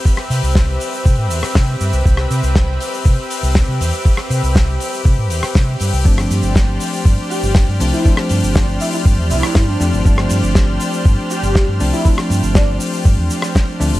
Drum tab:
HH |--o---o---o---o-|--o---o---o---o-|--o---o---o---o-|--o---o---o---o-|
SH |x-xxx-xxx-xxx-xx|x-xxx-xxx-xxx-xx|x-xxx-xxx-xxx-xx|x-xxx-xxx-xxx-xx|
SD |-r--o------ro---|-r--o-------o---|-r--o------ro---|-r--o-------o---|
BD |o---o---o---o---|o---o---o---o---|o---o---o---o---|o---o---o---o---|

HH |--o---o---o---o-|--o---o---o---o-|--o---o---o---o-|
SH |x-xxx-xxx-xxx-xx|x-xxx-xxx-xxx-xx|x-xxx-xxx-xxx-xx|
SD |-r--o------ro---|-r--o-------o---|-r--o------ro---|
BD |o---o---o---o---|o---o---o---o---|o---o---o---o---|